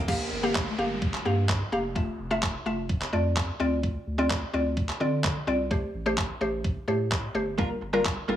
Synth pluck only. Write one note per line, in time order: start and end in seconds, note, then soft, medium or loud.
0.08 0.29 A#3 medium
0.08 0.29 G4 medium
0.08 0.29 F5 medium
0.43 0.64 A#3 medium
0.43 0.64 G4 medium
0.43 0.64 F5 loud
0.78 1.06 A#3 medium
0.78 1.06 G4 medium
0.78 1.06 F5 medium
1.25 1.53 A#3 medium
1.25 1.53 G4 medium
1.25 1.53 F5 medium
1.72 1.86 A#3 medium
1.72 1.86 G4 medium
1.72 1.86 F5 loud
1.95 2.16 A3 medium
1.95 2.17 F4 medium
1.95 2.17 E5 medium
2.31 2.52 A3 medium
2.31 2.52 F4 medium
2.31 2.52 E5 loud
2.66 2.94 A3 medium
2.66 2.94 F4 medium
2.66 2.94 E5 medium
3.13 3.40 A3 medium
3.13 3.41 F4 medium
3.13 3.41 D5 medium
3.60 4.07 C4 medium
3.60 4.07 F4 medium
3.60 4.07 D5 loud
4.18 4.39 C4 medium
4.18 4.39 F4 medium
4.18 4.39 D5 medium
4.53 4.81 C4 medium
4.53 4.81 F4 medium
4.53 4.81 D5 loud
5.00 5.28 C4 medium
5.00 5.28 F4 medium
5.00 5.28 D5 medium
5.47 5.61 C4 medium
5.47 5.61 F4 medium
5.47 5.61 D5 loud
5.71 5.91 A3 medium
5.71 5.92 G4 medium
5.71 5.92 C5 medium
6.06 6.27 A3 medium
6.06 6.27 G4 medium
6.06 6.27 C5 loud
6.41 6.69 A3 medium
6.41 6.69 G4 medium
6.41 6.69 C5 medium
6.88 7.15 A3 medium
6.88 7.16 G4 medium
6.88 7.16 C5 medium
7.35 7.49 A3 medium
7.35 7.49 G4 medium
7.35 7.49 C5 loud
7.58 7.79 G3 medium
7.58 7.79 F4 medium
7.58 7.79 A#4 loud
7.93 8.14 G3 medium
7.93 8.14 F4 medium
7.93 8.14 A#4 loud
8.28 8.37 G3 medium
8.28 8.37 F4 medium
8.28 8.37 A4 loud